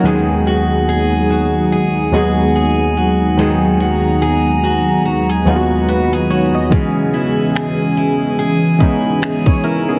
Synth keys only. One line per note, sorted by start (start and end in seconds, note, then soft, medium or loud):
0.00 1.39 D#2 medium
0.00 0.28 A#3 medium
0.00 0.28 F#4 medium
0.04 1.39 F#3 medium
0.04 1.40 G#3 medium
0.04 1.40 B3 medium
0.04 1.41 D#4 medium
0.04 1.41 G#4 medium
2.12 3.15 D#2 medium
2.12 3.16 F#3 medium
2.12 3.16 G#3 medium
2.12 3.17 B3 medium
2.12 3.17 D#4 medium
2.16 3.17 G#4 medium
3.37 4.72 D#2 medium
3.37 4.73 F#3 medium
3.37 4.73 G#3 medium
3.37 4.74 B3 medium
3.37 4.74 D#4 medium
3.41 4.74 G#4 medium
5.45 6.49 D#2 medium
5.45 6.49 F#3 medium
5.45 6.50 G#3 medium
5.45 6.50 B3 medium
5.45 5.88 D#4 medium
5.50 5.56 F4 medium
5.56 5.93 F#4 medium
5.89 6.29 D#4 medium
5.89 6.28 B4 medium
6.30 6.53 C#5 medium
6.55 6.94 F#4 medium
6.55 6.94 D#5 medium
6.70 8.05 E3 medium
6.70 8.06 G#3 medium
6.70 8.07 B3 medium
6.70 8.07 C#4 medium
6.74 8.08 G#4 medium
8.78 9.82 E3 medium
8.78 9.83 G#3 medium
8.78 9.22 B3 medium
8.78 9.23 C#4 medium
8.83 9.23 D#4 medium
9.47 9.63 E4 soft
9.47 9.63 C#5 medium
9.64 9.87 C#4 medium
9.64 9.87 A#4 medium
9.88 9.99 B3 medium
9.88 9.99 G#4 medium